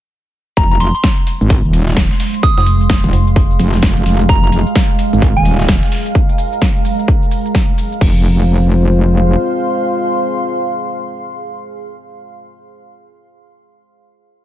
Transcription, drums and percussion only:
0.57 kick, closed hi-hat, shaker
0.71 closed hi-hat, shaker
0.80 closed hi-hat, open hi-hat, shaker
0.95 closed hi-hat, shaker
1.04 kick, snare, closed hi-hat, shaker
1.18 shaker
1.27 closed hi-hat, open hi-hat, shaker
1.41 closed hi-hat, shaker
1.50 kick, closed hi-hat, shaker
1.65 shaker
1.73 closed hi-hat, open hi-hat, shaker
1.88 snare, closed hi-hat, shaker
1.97 kick, snare, closed hi-hat, shaker
2.11 snare, shaker
2.20 snare, open hi-hat, shaker
2.34 closed hi-hat, shaker
2.43 kick, closed hi-hat, shaker
2.58 snare, closed hi-hat, shaker
2.66 closed hi-hat, open hi-hat, shaker
2.81 closed hi-hat, shaker
2.90 kick, snare, closed hi-hat, shaker
3.04 closed hi-hat, shaker
3.13 closed hi-hat, open hi-hat, shaker
3.27 closed hi-hat, shaker
3.36 kick, closed hi-hat, shaker
3.51 shaker
3.59 closed hi-hat, open hi-hat, shaker
3.74 snare, closed hi-hat, shaker
3.83 kick, snare, closed hi-hat, shaker
3.97 closed hi-hat, shaker
4.06 snare, closed hi-hat, open hi-hat, shaker
4.20 closed hi-hat, shaker
4.29 kick, closed hi-hat, shaker
4.44 closed hi-hat, shaker
4.52 closed hi-hat, open hi-hat, shaker
4.67 closed hi-hat, shaker
4.76 kick, snare, closed hi-hat, shaker
4.90 shaker
4.99 closed hi-hat, open hi-hat, shaker
5.13 closed hi-hat, shaker
5.22 kick, closed hi-hat, shaker
5.36 shaker
5.45 closed hi-hat, open hi-hat, shaker
5.60 snare, closed hi-hat, shaker
5.69 kick, snare, closed hi-hat, shaker
5.83 snare, shaker
5.92 snare, open hi-hat, shaker
6.06 closed hi-hat, shaker
6.15 kick, closed hi-hat, shaker
6.29 closed hi-hat, shaker
6.38 open hi-hat, shaker
6.53 closed hi-hat, shaker
6.62 kick, snare, shaker
6.76 shaker
6.85 open hi-hat, shaker
6.99 closed hi-hat, shaker
7.08 kick, closed hi-hat, shaker
7.23 shaker
7.31 open hi-hat, shaker
7.46 closed hi-hat, shaker
7.55 kick, snare, closed hi-hat, shaker
7.69 shaker
7.78 open hi-hat, shaker
7.92 closed hi-hat, shaker
8.01 kick, crash

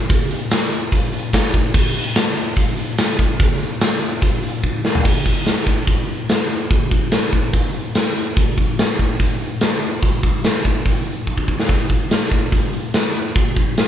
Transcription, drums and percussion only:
0.10 kick, closed hi-hat
0.31 closed hi-hat
0.51 snare, closed hi-hat, tambourine
0.72 closed hi-hat
0.92 kick, closed hi-hat
1.13 closed hi-hat
1.33 kick, snare, closed hi-hat, tambourine
1.54 kick, closed hi-hat
1.74 kick, crash
1.95 closed hi-hat
2.16 snare, closed hi-hat, tambourine
2.37 closed hi-hat
2.56 kick, closed hi-hat
2.78 closed hi-hat
2.98 snare, closed hi-hat, tambourine
3.19 kick, closed hi-hat
3.40 kick, closed hi-hat
3.51 snare
3.60 closed hi-hat
3.81 snare, closed hi-hat, tambourine
4.02 closed hi-hat
4.22 kick, closed hi-hat
4.43 closed hi-hat
4.64 kick
4.85 snare
4.95 floor tom
5.05 kick, crash
5.26 kick, closed hi-hat
5.46 snare, closed hi-hat, tambourine
5.67 kick, closed hi-hat
5.87 kick, closed hi-hat
6.09 closed hi-hat
6.29 snare, closed hi-hat, tambourine
6.50 closed hi-hat
6.71 kick, closed hi-hat
6.91 kick, closed hi-hat
7.12 snare, closed hi-hat, tambourine
7.33 kick, closed hi-hat
7.53 kick, closed hi-hat
7.74 closed hi-hat
7.95 snare, closed hi-hat, tambourine
8.16 closed hi-hat
8.37 kick, closed hi-hat
8.58 kick, closed hi-hat
8.79 snare, closed hi-hat, tambourine
8.99 kick, closed hi-hat
9.20 kick, closed hi-hat
9.40 closed hi-hat
9.61 snare, closed hi-hat, tambourine
9.82 closed hi-hat
10.03 kick, closed hi-hat
10.23 kick, closed hi-hat
10.44 snare, closed hi-hat, tambourine
10.65 kick, closed hi-hat
10.86 kick, closed hi-hat
11.07 closed hi-hat
11.27 kick
11.38 kick
11.48 kick
11.60 snare
11.69 kick, closed hi-hat
11.90 kick, closed hi-hat
12.11 snare, closed hi-hat, tambourine
12.32 kick, closed hi-hat
12.52 kick, closed hi-hat
12.74 closed hi-hat
12.94 snare, closed hi-hat, tambourine
13.15 closed hi-hat
13.36 kick, closed hi-hat
13.57 kick, closed hi-hat
13.78 snare, closed hi-hat, tambourine

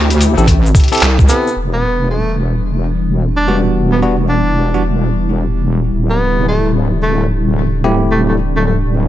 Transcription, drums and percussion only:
0.10 closed hi-hat, cabasa
0.21 closed hi-hat, cabasa
0.38 cabasa
0.47 kick, closed hi-hat, cabasa
0.66 cabasa
0.75 kick, closed hi-hat, cabasa
0.80 closed hi-hat
0.84 closed hi-hat
0.88 closed hi-hat
0.93 closed hi-hat, cabasa
0.95 closed hi-hat
0.97 closed hi-hat
1.00 clap, closed hi-hat, cabasa
1.03 closed hi-hat
1.19 kick, cabasa
1.29 closed hi-hat, cabasa
1.47 cabasa

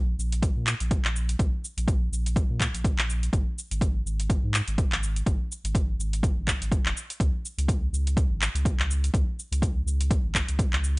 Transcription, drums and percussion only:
0.20 cabasa
0.32 closed hi-hat, cabasa
0.42 kick, closed hi-hat, cabasa
0.67 clap, cabasa
0.80 closed hi-hat, cabasa
0.91 kick, closed hi-hat, cabasa
1.05 clap
1.16 cabasa
1.29 closed hi-hat, cabasa
1.39 kick, closed hi-hat, cabasa
1.65 cabasa
1.78 closed hi-hat, cabasa
1.88 kick, closed hi-hat, cabasa
2.13 cabasa
2.26 closed hi-hat, cabasa
2.36 kick, closed hi-hat, cabasa
2.60 kick, clap, cabasa
2.75 closed hi-hat, cabasa
2.84 kick, closed hi-hat, cabasa
2.99 clap
3.10 cabasa
3.23 closed hi-hat, cabasa
3.33 kick, closed hi-hat, cabasa
3.58 cabasa
3.71 closed hi-hat, cabasa
3.81 kick, closed hi-hat, cabasa
4.07 cabasa
4.20 closed hi-hat, cabasa
4.30 kick, closed hi-hat, cabasa
4.54 clap, cabasa
4.68 closed hi-hat, cabasa
4.78 kick, closed hi-hat, cabasa
4.92 clap
5.03 cabasa
5.16 closed hi-hat, cabasa
5.26 kick, closed hi-hat, cabasa
5.52 cabasa
5.65 closed hi-hat, cabasa
5.75 kick, closed hi-hat, cabasa
6.00 cabasa
6.13 closed hi-hat, cabasa
6.23 kick, closed hi-hat, cabasa
6.47 kick, clap, cabasa
6.62 closed hi-hat, cabasa
6.72 kick, closed hi-hat, cabasa
6.86 clap
6.97 cabasa
7.10 closed hi-hat, cabasa
7.20 kick, closed hi-hat, cabasa
7.45 cabasa
7.59 closed hi-hat, cabasa
7.68 kick, closed hi-hat, cabasa
7.94 cabasa
8.07 closed hi-hat, cabasa
8.17 kick, closed hi-hat, cabasa
8.42 clap, cabasa
8.55 closed hi-hat, cabasa
8.65 kick, closed hi-hat, cabasa
8.80 clap
8.91 cabasa
9.04 closed hi-hat, cabasa
9.14 kick, closed hi-hat, cabasa
9.39 cabasa
9.53 closed hi-hat, cabasa
9.62 kick, closed hi-hat, cabasa
9.88 cabasa
10.01 closed hi-hat, cabasa
10.11 kick, closed hi-hat, cabasa
10.35 kick, clap, cabasa
10.48 closed hi-hat, cabasa
10.59 kick, closed hi-hat, cabasa
10.73 clap
10.84 cabasa

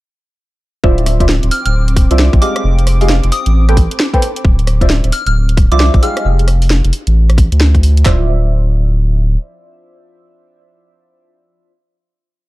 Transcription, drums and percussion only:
0.84 kick
0.98 closed hi-hat
1.06 cross-stick, open hi-hat
1.20 kick, closed hi-hat
1.29 snare
1.43 closed hi-hat
1.51 open hi-hat
1.66 closed hi-hat
1.88 closed hi-hat
1.96 kick, cross-stick, open hi-hat
2.11 closed hi-hat
2.19 snare
2.33 kick, closed hi-hat
2.42 open hi-hat
2.56 cross-stick, closed hi-hat
2.79 closed hi-hat
2.87 cross-stick, open hi-hat
3.01 open hi-hat
3.09 snare
3.24 closed hi-hat
3.32 open hi-hat
3.46 closed hi-hat
3.69 cross-stick, closed hi-hat
3.77 kick, open hi-hat
3.91 closed hi-hat
4.00 snare
4.14 kick, closed hi-hat
4.22 open hi-hat
4.36 closed hi-hat
4.45 kick
4.59 closed hi-hat
4.67 cross-stick, open hi-hat
4.81 kick, closed hi-hat
4.90 snare
5.04 closed hi-hat
5.12 open hi-hat
5.27 closed hi-hat
5.49 closed hi-hat
5.57 kick, cross-stick, open hi-hat
5.72 closed hi-hat
5.80 snare
5.94 kick, closed hi-hat
6.03 open hi-hat
6.17 cross-stick, closed hi-hat
6.39 closed hi-hat
6.48 cross-stick, open hi-hat
6.62 open hi-hat
6.70 snare
6.85 closed hi-hat
6.93 open hi-hat
7.07 closed hi-hat
7.30 cross-stick, closed hi-hat
7.38 kick, open hi-hat
7.52 closed hi-hat
7.61 snare
7.75 kick, closed hi-hat
7.83 open hi-hat
7.97 closed hi-hat
8.06 kick, clap

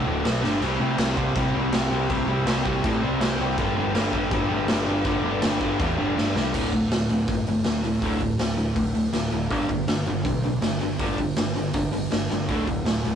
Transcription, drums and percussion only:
0.25 snare, crash
0.44 snare
0.62 crash
0.98 snare, crash
1.17 kick
1.36 kick, crash
1.72 snare, crash
2.10 kick, crash
2.47 snare, crash
2.65 kick
2.84 kick, crash
3.21 snare, crash
3.58 kick, crash
3.95 snare, crash
4.13 kick
4.31 kick, crash
4.68 snare, crash
5.05 kick, crash
5.42 snare, crash
5.61 kick
5.79 kick, crash
6.18 snare
6.36 snare
6.54 kick, crash
6.73 kick, open hi-hat
6.91 snare, open hi-hat
7.09 open hi-hat
7.28 kick, open hi-hat
7.47 open hi-hat
7.64 snare, open hi-hat
7.84 open hi-hat
8.02 kick, open hi-hat
8.21 kick, open hi-hat
8.39 snare, open hi-hat
8.58 open hi-hat
8.76 kick, open hi-hat
8.95 open hi-hat
9.13 snare, open hi-hat
9.32 open hi-hat
9.51 kick, open hi-hat
9.69 kick, open hi-hat
9.88 snare, open hi-hat
10.06 open hi-hat
10.25 kick, open hi-hat
10.43 open hi-hat
10.62 snare, open hi-hat
10.81 open hi-hat
10.99 kick, open hi-hat
11.18 kick, open hi-hat
11.36 snare, open hi-hat
11.56 open hi-hat
11.74 kick, open hi-hat
11.93 open hi-hat
12.12 snare, open hi-hat
12.30 snare
12.49 kick, open hi-hat
12.67 kick, open hi-hat
12.86 snare, open hi-hat
13.04 open hi-hat

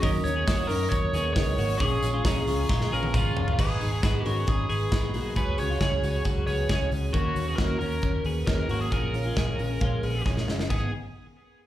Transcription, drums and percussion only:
0.03 kick, hi-hat pedal, open hi-hat, tambourine
0.25 hi-hat pedal, open hi-hat, tambourine
0.48 kick, snare, hi-hat pedal, open hi-hat, tambourine
0.69 hi-hat pedal, open hi-hat, tambourine
0.91 kick, hi-hat pedal, open hi-hat, tambourine
1.14 hi-hat pedal, open hi-hat, tambourine
1.36 kick, snare, hi-hat pedal, open hi-hat, tambourine
1.58 hi-hat pedal, open hi-hat
1.80 kick, hi-hat pedal, open hi-hat, tambourine
2.02 hi-hat pedal, open hi-hat, tambourine
2.25 kick, snare, hi-hat pedal, open hi-hat, tambourine
2.47 hi-hat pedal, open hi-hat, tambourine
2.69 kick, snare, tambourine
2.81 snare
2.94 tambourine
3.03 high tom
3.14 kick, mid tom, tambourine
3.37 floor tom
3.48 floor tom
3.59 kick, crash, tambourine
3.81 open hi-hat, tambourine
4.03 kick, snare, closed hi-hat, tambourine
4.25 open hi-hat, tambourine
4.47 kick, closed hi-hat, tambourine
4.70 open hi-hat, tambourine
4.92 kick, snare, closed hi-hat, tambourine
5.14 open hi-hat
5.36 kick, closed hi-hat, tambourine
5.58 open hi-hat, tambourine
5.81 kick, snare, closed hi-hat, tambourine
6.03 open hi-hat, tambourine
6.25 kick, closed hi-hat, tambourine
6.47 open hi-hat, tambourine
6.69 kick, snare, closed hi-hat, tambourine
6.92 open hi-hat, tambourine
7.14 kick, closed hi-hat
7.36 open hi-hat
7.58 kick, snare, closed hi-hat
7.81 open hi-hat
8.02 kick, closed hi-hat
8.24 open hi-hat
8.47 kick, snare, closed hi-hat
8.69 open hi-hat
8.92 kick, closed hi-hat
9.14 open hi-hat
9.37 kick, snare, closed hi-hat
9.59 open hi-hat
9.81 kick, closed hi-hat
10.03 open hi-hat
10.26 kick, snare
10.37 snare
10.48 snare
10.59 snare
10.70 kick, crash

